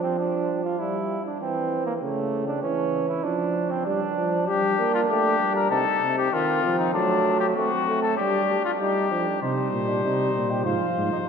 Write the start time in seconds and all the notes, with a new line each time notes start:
Already playing: F3
0.03 C4
0.19 D4
0.64 F4
0.79 G3 E4
1.26 D4
1.40 E3 C4
1.86 A#3
2.02 C#3 A3
2.48 D4
2.63 E3 C#4
3.09 E4
3.24 F3 D4
3.70 C4
3.85 G3 D4
4.17 F3
4.47 G3 D4 G4
4.79 A#3
4.94 F4
5.09 A3 G4
5.40 G3
5.55 A#4
5.70 C3 D#4 A4
6.01 C3
6.17 G4
6.32 D#3 C4 F4
6.63 F3
6.78 D#4
6.93 F#3 A3 D4
7.39 G4
7.55 A3 C4 F#4
7.87 A3
8.02 A4
8.17 G3 D4 G4
8.64 F4
8.80 G3 D#4 G4
9.11 F3 D4
9.42 C3 G3 D#4 C5
9.73 A#2
9.89 D4
10.04 C3 D#4
10.35 A#2
10.51 G4
10.65 G#2 F3 F4 C5
10.97 G#2
11.11 D#4